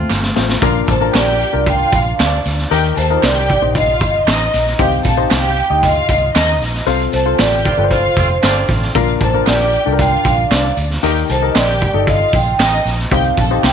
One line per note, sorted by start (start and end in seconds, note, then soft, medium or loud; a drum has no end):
0.00 0.20 A3 medium
0.00 0.33 A3 medium
0.00 0.35 A3 medium
0.00 0.20 C4 medium
0.00 0.35 C4 medium
0.00 0.20 F4 medium
0.00 0.35 F4 medium
0.00 0.23 C5 medium
0.10 0.30 G1 loud
0.10 snare medium
0.10 clap medium
0.10 tambourine medium
0.23 snare medium
0.36 0.56 A1 medium
0.36 0.56 A3 medium
0.36 0.56 C4 medium
0.36 0.56 F4 medium
0.36 0.56 C5 medium
0.36 snare medium
0.36 tambourine medium
0.49 snare medium
0.61 0.81 A#1 loud
0.61 1.36 A#2 medium
0.61 0.92 D4 medium
0.61 0.82 F4 loud
0.61 0.92 F4 medium
0.61 0.92 A#4 medium
0.61 0.82 F5 loud
0.61 kick loud
0.61 closed hi-hat medium
0.61 tambourine medium
0.87 1.07 A1 medium
0.87 1.09 A4 medium
0.87 1.16 C5 medium
0.87 1.09 A5 loud
0.87 kick loud
0.87 closed hi-hat medium
0.87 tambourine medium
1.01 1.42 D4 medium
1.01 1.42 F4 medium
1.01 1.42 A#4 medium
1.14 1.43 A#1 medium
1.14 1.63 G4 loud
1.14 1.64 D5 loud
1.14 1.63 G5 loud
1.14 snare loud
1.14 clap loud
1.14 closed hi-hat medium
1.14 tambourine medium
1.41 closed hi-hat medium
1.53 1.82 C2 medium
1.53 2.34 D4 medium
1.53 2.34 F4 medium
1.53 2.34 A#4 medium
1.66 2.15 F4 loud
1.66 2.15 F5 loud
1.66 1.92 G5 loud
1.66 kick loud
1.66 closed hi-hat medium
1.92 2.12 A#1 medium
1.92 2.42 F5 medium
1.92 kick medium
1.92 closed hi-hat medium
1.92 tambourine medium
2.19 2.38 D2 loud
2.19 2.55 D4 loud
2.19 2.55 D5 loud
2.19 snare loud
2.19 clap loud
2.19 closed hi-hat loud
2.19 tambourine medium
2.45 2.64 D2 medium
2.45 snare soft
2.45 closed hi-hat medium
2.45 tambourine medium
2.58 snare soft
2.70 2.90 D#2 loud
2.70 3.45 D#3 medium
2.70 3.01 D#4 medium
2.70 2.91 G4 loud
2.70 3.01 G4 medium
2.70 3.01 A#4 loud
2.70 2.91 G5 loud
2.70 closed hi-hat medium
2.70 tambourine medium
2.83 closed hi-hat medium
2.97 3.16 D#2 loud
2.97 3.17 A4 medium
2.97 3.22 C5 medium
2.97 3.17 A5 loud
2.97 closed hi-hat medium
2.97 tambourine medium
3.10 3.50 D#4 medium
3.10 3.16 F4 medium
3.10 3.50 A#4 medium
3.17 3.54 G4 medium
3.23 3.52 C2 loud
3.23 3.72 G4 loud
3.23 3.48 D5 medium
3.23 3.72 G5 loud
3.23 snare loud
3.23 clap medium
3.23 closed hi-hat medium
3.23 tambourine medium
3.37 closed hi-hat soft
3.49 3.62 D5 loud
3.49 kick medium
3.49 closed hi-hat medium
3.62 4.01 A#1 loud
3.62 4.43 D#4 medium
3.62 4.43 G4 medium
3.62 4.43 C5 medium
3.75 4.24 F4 loud
3.75 3.88 D#5 loud
3.75 4.24 F5 loud
3.75 kick medium
3.75 closed hi-hat medium
3.75 tambourine soft
4.01 4.20 G1 loud
4.01 4.82 D#5 medium
4.01 kick loud
4.01 closed hi-hat medium
4.01 tambourine medium
4.27 4.46 A1 loud
4.27 4.64 D#4 loud
4.27 4.64 D#5 loud
4.27 snare loud
4.27 clap loud
4.27 closed hi-hat medium
4.27 tambourine loud
4.53 4.73 A#1 medium
4.53 snare soft
4.53 closed hi-hat medium
4.53 tambourine medium
4.66 snare soft
4.79 4.98 C2 loud
4.79 5.53 C3 medium
4.79 5.09 D#4 medium
4.79 5.00 G4 loud
4.79 5.09 G4 medium
4.79 5.09 C5 medium
4.79 5.60 F5 medium
4.79 5.00 G5 loud
4.79 kick loud
4.79 closed hi-hat medium
4.79 tambourine medium
4.92 closed hi-hat soft
5.03 5.24 A#1 loud
5.03 5.26 A4 medium
5.03 5.25 A5 loud
5.03 kick medium
5.03 closed hi-hat medium
5.03 tambourine medium
5.17 5.58 D#4 medium
5.17 5.58 G4 medium
5.17 5.58 C5 medium
5.31 5.60 C2 medium
5.31 5.80 G4 loud
5.31 5.80 G5 loud
5.31 snare loud
5.31 clap medium
5.31 closed hi-hat medium
5.31 tambourine medium
5.45 closed hi-hat medium
5.57 5.84 G5 loud
5.57 closed hi-hat medium
5.70 5.99 D2 medium
5.70 6.51 D#4 medium
5.70 6.51 G4 medium
5.70 6.51 D#5 medium
5.83 6.32 F4 loud
5.83 6.58 D#5 medium
5.83 6.32 F5 loud
5.83 kick medium
5.83 closed hi-hat loud
5.83 tambourine soft
6.09 6.28 C2 loud
6.09 kick loud
6.09 closed hi-hat medium
6.09 tambourine medium
6.34 6.61 D#2 loud
6.34 6.71 D#4 loud
6.34 6.71 D#5 loud
6.34 snare loud
6.34 clap loud
6.34 closed hi-hat medium
6.34 tambourine loud
6.61 6.80 A#1 loud
6.61 snare soft
6.61 open hi-hat medium
6.61 tambourine medium
6.74 snare soft
6.86 7.06 C2 loud
6.86 7.61 C3 medium
6.86 7.17 F4 medium
6.86 7.08 F4 medium
6.86 7.17 A4 medium
6.86 7.17 C5 loud
6.86 7.08 F5 loud
6.86 closed hi-hat medium
6.86 tambourine medium
6.99 closed hi-hat medium
7.12 7.32 C2 medium
7.12 7.33 A4 medium
7.12 7.38 C5 loud
7.12 7.33 A5 loud
7.12 closed hi-hat medium
7.12 tambourine medium
7.25 7.66 F4 medium
7.25 7.66 A4 medium
7.25 7.66 C5 medium
7.38 7.68 A1 medium
7.38 7.88 G4 loud
7.38 7.93 D5 loud
7.38 7.88 G5 loud
7.38 snare loud
7.38 clap medium
7.38 closed hi-hat medium
7.38 tambourine loud
7.53 closed hi-hat soft
7.64 7.76 A3 medium
7.64 7.76 C4 medium
7.64 7.76 F4 medium
7.64 kick medium
7.64 closed hi-hat medium
7.77 8.07 G1 loud
7.77 8.58 F4 medium
7.77 8.59 A4 medium
7.77 7.84 B4 medium
7.84 8.62 C5 medium
7.90 8.02 A3 medium
7.90 8.02 C4 medium
7.90 8.40 F4 loud
7.90 8.02 F4 medium
7.90 8.65 C5 medium
7.90 8.39 F5 loud
7.90 kick medium
7.90 closed hi-hat loud
8.16 8.36 F1 medium
8.16 8.28 A3 medium
8.16 8.28 C4 medium
8.16 8.28 F4 medium
8.16 kick loud
8.16 closed hi-hat medium
8.16 tambourine medium
8.42 8.63 G1 loud
8.42 8.93 A3 loud
8.42 8.93 C4 medium
8.42 8.80 D4 loud
8.42 8.93 F4 loud
8.42 8.80 D5 loud
8.42 snare loud
8.42 clap medium
8.42 closed hi-hat loud
8.42 tambourine loud
8.69 8.88 A1 medium
8.69 kick medium
8.69 snare soft
8.69 closed hi-hat medium
8.69 tambourine medium
8.82 snare soft
8.95 9.14 A#1 loud
8.95 9.69 A#2 medium
8.95 9.25 D4 medium
8.95 9.25 F4 medium
8.95 9.16 F4 loud
8.95 9.25 A#4 loud
8.95 9.16 F5 loud
8.95 kick loud
8.95 closed hi-hat medium
8.95 tambourine medium
9.08 closed hi-hat soft
9.20 9.40 A1 loud
9.20 9.42 A4 medium
9.20 9.35 C5 medium
9.20 9.42 A5 loud
9.20 kick loud
9.20 closed hi-hat medium
9.20 tambourine medium
9.34 9.74 D4 medium
9.34 9.74 F4 medium
9.34 9.75 A#4 medium
9.47 9.76 A#1 medium
9.47 9.96 G4 loud
9.47 10.02 D5 loud
9.47 9.96 G5 loud
9.47 snare loud
9.47 clap medium
9.47 closed hi-hat medium
9.47 tambourine loud
9.61 closed hi-hat medium
9.73 closed hi-hat medium
9.73 tambourine soft
9.86 10.15 C2 loud
9.86 10.67 D4 medium
9.86 10.67 F4 medium
9.86 9.92 A4 medium
9.92 10.70 A#4 medium
9.99 10.48 F4 loud
9.99 10.48 F5 loud
9.99 10.27 G5 loud
9.99 kick medium
9.99 closed hi-hat medium
9.99 tambourine soft
10.25 10.44 A#1 loud
10.25 10.74 F5 loud
10.25 kick loud
10.25 closed hi-hat medium
10.25 tambourine medium
10.50 10.70 C2 loud
10.50 10.88 D4 loud
10.50 10.87 D5 loud
10.50 snare loud
10.50 clap medium
10.50 closed hi-hat medium
10.50 tambourine loud
10.77 10.96 D2 loud
10.77 closed hi-hat medium
10.77 tambourine medium
10.90 snare soft
11.03 11.22 D#2 loud
11.03 11.77 D#3 medium
11.03 11.33 D#4 loud
11.03 11.24 G4 loud
11.03 11.33 G4 medium
11.03 11.34 A#4 medium
11.03 11.24 G5 loud
11.03 closed hi-hat medium
11.03 tambourine medium
11.16 closed hi-hat medium
11.28 11.49 C2 loud
11.28 11.50 A4 loud
11.28 11.48 C5 medium
11.28 11.50 A5 loud
11.28 closed hi-hat medium
11.28 tambourine medium
11.42 11.83 D#4 medium
11.42 11.83 G4 medium
11.42 11.83 A#4 medium
11.50 11.56 D#5 medium
11.55 11.84 A#1 loud
11.55 12.04 G4 loud
11.55 12.10 D5 medium
11.55 12.04 G5 loud
11.55 snare loud
11.55 clap loud
11.55 closed hi-hat medium
11.55 tambourine loud
11.68 closed hi-hat medium
11.81 kick loud
11.81 closed hi-hat medium
11.94 12.23 G1 medium
11.94 12.75 D#4 medium
11.94 12.75 G4 medium
11.94 12.75 A4 medium
12.07 12.56 F4 loud
12.07 12.35 D#5 loud
12.07 12.56 F5 loud
12.07 kick loud
12.07 closed hi-hat medium
12.33 12.52 A#1 loud
12.33 12.83 G5 loud
12.33 kick medium
12.33 closed hi-hat medium
12.33 tambourine medium
12.59 12.78 A1 loud
12.59 12.96 D#4 loud
12.59 12.96 D#5 loud
12.59 snare loud
12.59 clap loud
12.59 closed hi-hat loud
12.59 tambourine loud
12.85 13.05 A#1 loud
12.85 snare soft
12.85 open hi-hat medium
12.85 tambourine medium
12.99 snare soft
13.11 13.31 C2 loud
13.11 13.73 C3 medium
13.11 13.42 D#4 medium
13.11 13.32 G4 loud
13.11 13.42 G4 medium
13.11 13.42 C5 medium
13.11 13.61 F5 loud
13.11 13.32 G5 loud
13.11 kick loud
13.11 closed hi-hat medium
13.11 tambourine medium
13.24 closed hi-hat medium
13.37 13.57 A#1 loud
13.37 13.58 A4 loud
13.37 13.58 A5 loud
13.37 kick medium
13.37 closed hi-hat medium
13.37 tambourine medium
13.50 13.73 D#4 medium
13.50 13.73 G4 medium
13.50 13.73 C5 medium
13.63 13.73 C2 loud
13.63 13.73 G4 loud
13.63 13.73 G5 loud
13.63 snare medium
13.63 clap medium
13.63 closed hi-hat medium
13.63 tambourine medium